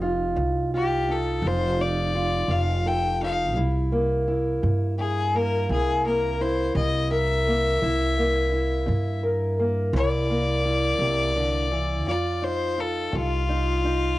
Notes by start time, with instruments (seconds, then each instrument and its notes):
Already playing: upright bass F1, steel-string acoustic guitar D#4
0.02 steel-string acoustic guitar F4
0.36 upright bass C2, steel-string acoustic guitar F2
0.74 steel-string acoustic guitar F4, fiddle G4
1.08 steel-string acoustic guitar D#4, fiddle A4
1.42 upright bass F1, steel-string acoustic guitar F2 F4
1.47 fiddle C5
1.81 steel-string acoustic guitar D#4, fiddle D5
2.15 steel-string acoustic guitar F4
2.48 upright bass F1, steel-string acoustic guitar F2, fiddle F5
2.86 steel-string acoustic guitar A4, fiddle G5
3.22 steel-string acoustic guitar D#4, fiddle F5
3.55 upright bass C2, steel-string acoustic guitar C3 E4
3.92 steel-string acoustic guitar A#3
4.28 steel-string acoustic guitar E4
4.63 upright bass G2, steel-string acoustic guitar C3
4.99 steel-string acoustic guitar E4, fiddle G#4
5.35 steel-string acoustic guitar A#3, fiddle A#4
5.69 upright bass C2, steel-string acoustic guitar C3 E4, fiddle G#4
6.06 steel-string acoustic guitar A#3, fiddle A#4
6.41 steel-string acoustic guitar E4, fiddle C5
6.75 upright bass C2, steel-string acoustic guitar C3, fiddle D#5
7.11 steel-string acoustic guitar A#4, fiddle E5
7.47 steel-string acoustic guitar A#3
7.82 upright bass C2, steel-string acoustic guitar C3 E4
8.18 steel-string acoustic guitar A#3
8.52 steel-string acoustic guitar E4
8.86 upright bass G2, steel-string acoustic guitar C3
9.23 steel-string acoustic guitar A#4
9.59 steel-string acoustic guitar A#3
9.93 upright bass C2, steel-string acoustic guitar C3 E4, fiddle D5
10.30 steel-string acoustic guitar A#3
10.65 steel-string acoustic guitar E4
10.99 upright bass C2, steel-string acoustic guitar C3
11.36 steel-string acoustic guitar D3
11.71 steel-string acoustic guitar E3
12.05 upright bass F2, steel-string acoustic guitar F2 F4, fiddle D5
12.42 steel-string acoustic guitar D#4, fiddle C5
12.78 steel-string acoustic guitar F4, fiddle A4
13.12 upright bass C2, steel-string acoustic guitar F2, fiddle F4
13.49 steel-string acoustic guitar D#4
13.84 steel-string acoustic guitar D#4